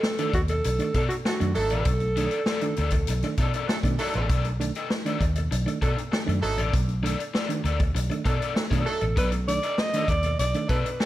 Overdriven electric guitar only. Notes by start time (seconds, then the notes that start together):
0.04 muted overdriven electric guitar stroke
0.19 D#4 A4 D5
0.34 muted overdriven electric guitar stroke
0.50 muted overdriven electric guitar stroke
0.65 muted overdriven electric guitar stroke
0.80 muted overdriven electric guitar stroke
0.95 D#4 A4 D5
1.10 muted overdriven electric guitar stroke
1.26 muted overdriven electric guitar stroke
1.40 muted overdriven electric guitar stroke
1.71 D#4 A4 D5
2.16 D#4 A4 D5
2.47 D#4 A4 D5
2.62 muted overdriven electric guitar stroke
2.78 D#4 A4 D5
2.93 muted overdriven electric guitar stroke
3.09 muted overdriven electric guitar stroke
3.24 muted overdriven electric guitar stroke
3.39 D#4 A4 D5
3.54 D#4 A4 D5
3.69 muted overdriven electric guitar stroke
3.84 muted overdriven electric guitar stroke
4.00 D#4 A4 D5
4.16 D#4 A4 D5
4.30 D#4 A4 D5
4.46 muted overdriven electric guitar stroke
4.61 muted overdriven electric guitar stroke
4.76 D#4 A4 D#5
4.90 muted overdriven electric guitar stroke
5.06 D#4 A4 D5
5.21 muted overdriven electric guitar stroke
5.36 muted overdriven electric guitar stroke
5.51 muted overdriven electric guitar stroke
5.66 muted overdriven electric guitar stroke
5.82 D#4 A4 D5
5.96 muted overdriven electric guitar stroke
6.12 muted overdriven electric guitar stroke
6.28 muted overdriven electric guitar stroke
6.58 D#4 A4 D5
7.03 D#4 A4 D5
7.34 D#4 A4 D5
7.49 muted overdriven electric guitar stroke
7.64 D#4 A4 D5
7.81 muted overdriven electric guitar stroke
7.95 muted overdriven electric guitar stroke
8.10 muted overdriven electric guitar stroke
8.25 D#4 A4 D5
8.41 D#4 A4 D5
8.56 muted overdriven electric guitar stroke
8.71 D#4 A4 D5
8.86 muted overdriven electric guitar stroke
9.02 muted overdriven electric guitar stroke
9.16 D#4 A4 D5
9.32 muted overdriven electric guitar stroke
9.49 muted overdriven electric guitar stroke
9.63 D#4 A4 D#5
9.79 muted overdriven electric guitar stroke
9.95 D#4 A4 D5
10.11 muted overdriven electric guitar stroke
10.25 muted overdriven electric guitar stroke
10.41 muted overdriven electric guitar stroke
10.56 muted overdriven electric guitar stroke
10.70 D#4 A4 D5
10.86 muted overdriven electric guitar stroke
11.00 muted overdriven electric guitar stroke